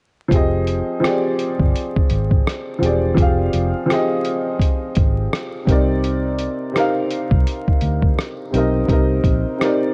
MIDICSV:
0, 0, Header, 1, 5, 480
1, 0, Start_track
1, 0, Tempo, 714286
1, 210, Time_signature, 4, 2, 24, 8
1, 6679, End_track
2, 0, Start_track
2, 0, Title_t, "Upright piano"
2, 0, Program_c, 0, 0
2, 191, Note_on_c, 0, 53, 76
2, 202, Note_on_c, 0, 60, 64
2, 214, Note_on_c, 0, 67, 67
2, 227, Note_on_c, 0, 68, 70
2, 239, Note_on_c, 0, 75, 84
2, 327, Control_c, 0, 64, 127
2, 548, Note_off_c, 0, 53, 0
2, 554, Note_off_c, 0, 60, 0
2, 560, Note_off_c, 0, 67, 0
2, 566, Note_off_c, 0, 68, 0
2, 573, Note_off_c, 0, 75, 0
2, 673, Note_on_c, 0, 53, 81
2, 683, Note_on_c, 0, 60, 69
2, 697, Note_on_c, 0, 67, 64
2, 708, Note_on_c, 0, 68, 70
2, 720, Note_on_c, 0, 74, 81
2, 1352, Note_off_c, 0, 53, 0
2, 1357, Note_off_c, 0, 60, 0
2, 1364, Note_off_c, 0, 67, 0
2, 1370, Note_off_c, 0, 68, 0
2, 1376, Note_off_c, 0, 74, 0
2, 1873, Note_on_c, 0, 53, 67
2, 1885, Note_on_c, 0, 60, 61
2, 1897, Note_on_c, 0, 67, 61
2, 1910, Note_on_c, 0, 68, 66
2, 1921, Note_on_c, 0, 74, 72
2, 2063, Note_off_c, 0, 53, 0
2, 2069, Note_off_c, 0, 60, 0
2, 2075, Note_off_c, 0, 67, 0
2, 2082, Note_off_c, 0, 68, 0
2, 2087, Note_off_c, 0, 74, 0
2, 2114, Note_on_c, 0, 53, 77
2, 2127, Note_on_c, 0, 60, 68
2, 2138, Note_on_c, 0, 67, 69
2, 2149, Note_on_c, 0, 68, 65
2, 2163, Note_on_c, 0, 77, 83
2, 2470, Note_off_c, 0, 53, 0
2, 2476, Note_off_c, 0, 60, 0
2, 2482, Note_off_c, 0, 67, 0
2, 2488, Note_off_c, 0, 68, 0
2, 2495, Note_off_c, 0, 77, 0
2, 2594, Note_on_c, 0, 53, 73
2, 2606, Note_on_c, 0, 60, 68
2, 2619, Note_on_c, 0, 67, 65
2, 2630, Note_on_c, 0, 68, 64
2, 2643, Note_on_c, 0, 75, 82
2, 3272, Note_off_c, 0, 53, 0
2, 3279, Note_off_c, 0, 60, 0
2, 3285, Note_off_c, 0, 67, 0
2, 3291, Note_off_c, 0, 68, 0
2, 3297, Note_off_c, 0, 75, 0
2, 3797, Note_on_c, 0, 48, 74
2, 3807, Note_on_c, 0, 60, 72
2, 3819, Control_c, 0, 64, 0
2, 3820, Note_on_c, 0, 63, 69
2, 3831, Note_on_c, 0, 70, 65
2, 3843, Note_on_c, 0, 74, 89
2, 3955, Control_c, 0, 64, 127
2, 4401, Note_off_c, 0, 48, 0
2, 4406, Note_off_c, 0, 60, 0
2, 4413, Note_off_c, 0, 63, 0
2, 4419, Note_off_c, 0, 70, 0
2, 4425, Note_off_c, 0, 74, 0
2, 4515, Note_on_c, 0, 48, 78
2, 4528, Note_on_c, 0, 60, 67
2, 4541, Note_on_c, 0, 63, 74
2, 4552, Note_on_c, 0, 70, 72
2, 4567, Note_on_c, 0, 77, 84
2, 5193, Note_off_c, 0, 48, 0
2, 5200, Note_off_c, 0, 60, 0
2, 5206, Note_off_c, 0, 63, 0
2, 5212, Note_off_c, 0, 70, 0
2, 5219, Note_off_c, 0, 77, 0
2, 5717, Note_on_c, 0, 48, 64
2, 5729, Note_on_c, 0, 60, 60
2, 5740, Note_on_c, 0, 63, 63
2, 5753, Note_on_c, 0, 70, 65
2, 5765, Note_on_c, 0, 75, 72
2, 5905, Note_off_c, 0, 48, 0
2, 5911, Note_off_c, 0, 60, 0
2, 5916, Note_off_c, 0, 63, 0
2, 5923, Note_off_c, 0, 70, 0
2, 5929, Note_off_c, 0, 75, 0
2, 5955, Note_on_c, 0, 48, 78
2, 5967, Note_on_c, 0, 60, 72
2, 5978, Note_on_c, 0, 63, 67
2, 5991, Note_on_c, 0, 70, 75
2, 6002, Note_on_c, 0, 75, 76
2, 6310, Note_off_c, 0, 48, 0
2, 6316, Note_off_c, 0, 60, 0
2, 6322, Note_off_c, 0, 63, 0
2, 6328, Note_off_c, 0, 70, 0
2, 6334, Note_off_c, 0, 75, 0
2, 6435, Note_on_c, 0, 48, 72
2, 6447, Note_on_c, 0, 60, 68
2, 6460, Note_on_c, 0, 63, 73
2, 6473, Note_on_c, 0, 70, 75
2, 6484, Note_on_c, 0, 74, 86
2, 6679, Note_off_c, 0, 48, 0
2, 6679, Note_off_c, 0, 60, 0
2, 6679, Note_off_c, 0, 63, 0
2, 6679, Note_off_c, 0, 70, 0
2, 6679, Note_off_c, 0, 74, 0
2, 6679, End_track
3, 0, Start_track
3, 0, Title_t, "Fingered electric bass"
3, 0, Program_c, 1, 33
3, 212, Note_on_c, 1, 29, 91
3, 542, Note_off_c, 1, 29, 0
3, 1074, Note_on_c, 1, 31, 92
3, 1155, Note_off_c, 1, 31, 0
3, 1417, Note_on_c, 1, 32, 74
3, 1619, Note_off_c, 1, 32, 0
3, 1896, Note_on_c, 1, 28, 86
3, 2099, Note_off_c, 1, 28, 0
3, 2134, Note_on_c, 1, 29, 102
3, 2338, Note_off_c, 1, 29, 0
3, 2377, Note_on_c, 1, 29, 86
3, 2500, Note_off_c, 1, 29, 0
3, 3340, Note_on_c, 1, 32, 84
3, 3541, Note_off_c, 1, 32, 0
3, 3815, Note_on_c, 1, 36, 98
3, 4349, Note_off_c, 1, 36, 0
3, 4915, Note_on_c, 1, 36, 87
3, 4995, Note_off_c, 1, 36, 0
3, 5256, Note_on_c, 1, 38, 79
3, 5459, Note_off_c, 1, 38, 0
3, 5737, Note_on_c, 1, 35, 91
3, 5939, Note_off_c, 1, 35, 0
3, 5974, Note_on_c, 1, 36, 100
3, 6178, Note_off_c, 1, 36, 0
3, 6210, Note_on_c, 1, 34, 86
3, 6336, Note_off_c, 1, 34, 0
3, 6679, End_track
4, 0, Start_track
4, 0, Title_t, "Muted fingered electric bass strokes"
4, 1323, Note_on_c, 9, 29, 41
4, 1390, Note_off_c, 9, 29, 0
4, 5162, Note_on_c, 9, 29, 40
4, 5229, Note_off_c, 9, 29, 0
4, 6679, End_track
5, 0, Start_track
5, 0, Title_t, "Drums"
5, 209, Note_on_c, 9, 36, 104
5, 216, Note_on_c, 9, 42, 69
5, 277, Note_off_c, 9, 36, 0
5, 283, Note_off_c, 9, 42, 0
5, 451, Note_on_c, 9, 42, 60
5, 519, Note_off_c, 9, 42, 0
5, 701, Note_on_c, 9, 37, 106
5, 706, Note_on_c, 9, 42, 80
5, 768, Note_off_c, 9, 37, 0
5, 773, Note_off_c, 9, 42, 0
5, 934, Note_on_c, 9, 42, 67
5, 1001, Note_off_c, 9, 42, 0
5, 1072, Note_on_c, 9, 36, 86
5, 1139, Note_off_c, 9, 36, 0
5, 1179, Note_on_c, 9, 42, 87
5, 1246, Note_off_c, 9, 42, 0
5, 1319, Note_on_c, 9, 36, 91
5, 1386, Note_off_c, 9, 36, 0
5, 1408, Note_on_c, 9, 42, 64
5, 1476, Note_off_c, 9, 42, 0
5, 1552, Note_on_c, 9, 36, 85
5, 1619, Note_off_c, 9, 36, 0
5, 1662, Note_on_c, 9, 37, 96
5, 1675, Note_on_c, 9, 42, 85
5, 1729, Note_off_c, 9, 37, 0
5, 1742, Note_off_c, 9, 42, 0
5, 1901, Note_on_c, 9, 42, 68
5, 1968, Note_off_c, 9, 42, 0
5, 2131, Note_on_c, 9, 36, 114
5, 2137, Note_on_c, 9, 42, 74
5, 2198, Note_off_c, 9, 36, 0
5, 2204, Note_off_c, 9, 42, 0
5, 2373, Note_on_c, 9, 42, 63
5, 2440, Note_off_c, 9, 42, 0
5, 2622, Note_on_c, 9, 37, 96
5, 2627, Note_on_c, 9, 42, 76
5, 2689, Note_off_c, 9, 37, 0
5, 2694, Note_off_c, 9, 42, 0
5, 2854, Note_on_c, 9, 42, 70
5, 2921, Note_off_c, 9, 42, 0
5, 3088, Note_on_c, 9, 36, 85
5, 3102, Note_on_c, 9, 42, 96
5, 3155, Note_off_c, 9, 36, 0
5, 3169, Note_off_c, 9, 42, 0
5, 3329, Note_on_c, 9, 42, 64
5, 3338, Note_on_c, 9, 36, 102
5, 3396, Note_off_c, 9, 42, 0
5, 3405, Note_off_c, 9, 36, 0
5, 3582, Note_on_c, 9, 37, 101
5, 3595, Note_on_c, 9, 42, 86
5, 3650, Note_off_c, 9, 37, 0
5, 3663, Note_off_c, 9, 42, 0
5, 3811, Note_on_c, 9, 36, 107
5, 3820, Note_on_c, 9, 42, 74
5, 3879, Note_off_c, 9, 36, 0
5, 3888, Note_off_c, 9, 42, 0
5, 4058, Note_on_c, 9, 42, 64
5, 4125, Note_off_c, 9, 42, 0
5, 4292, Note_on_c, 9, 42, 58
5, 4359, Note_off_c, 9, 42, 0
5, 4542, Note_on_c, 9, 37, 93
5, 4547, Note_on_c, 9, 42, 78
5, 4609, Note_off_c, 9, 37, 0
5, 4614, Note_off_c, 9, 42, 0
5, 4775, Note_on_c, 9, 42, 67
5, 4842, Note_off_c, 9, 42, 0
5, 4913, Note_on_c, 9, 36, 90
5, 4980, Note_off_c, 9, 36, 0
5, 5019, Note_on_c, 9, 42, 90
5, 5086, Note_off_c, 9, 42, 0
5, 5160, Note_on_c, 9, 36, 80
5, 5227, Note_off_c, 9, 36, 0
5, 5248, Note_on_c, 9, 42, 66
5, 5315, Note_off_c, 9, 42, 0
5, 5392, Note_on_c, 9, 36, 84
5, 5459, Note_off_c, 9, 36, 0
5, 5501, Note_on_c, 9, 37, 99
5, 5514, Note_on_c, 9, 42, 81
5, 5569, Note_off_c, 9, 37, 0
5, 5582, Note_off_c, 9, 42, 0
5, 5738, Note_on_c, 9, 42, 70
5, 5806, Note_off_c, 9, 42, 0
5, 5970, Note_on_c, 9, 36, 109
5, 5976, Note_on_c, 9, 42, 72
5, 6038, Note_off_c, 9, 36, 0
5, 6043, Note_off_c, 9, 42, 0
5, 6207, Note_on_c, 9, 36, 75
5, 6211, Note_on_c, 9, 42, 60
5, 6274, Note_off_c, 9, 36, 0
5, 6279, Note_off_c, 9, 42, 0
5, 6459, Note_on_c, 9, 37, 109
5, 6464, Note_on_c, 9, 42, 88
5, 6526, Note_off_c, 9, 37, 0
5, 6531, Note_off_c, 9, 42, 0
5, 6679, End_track
0, 0, End_of_file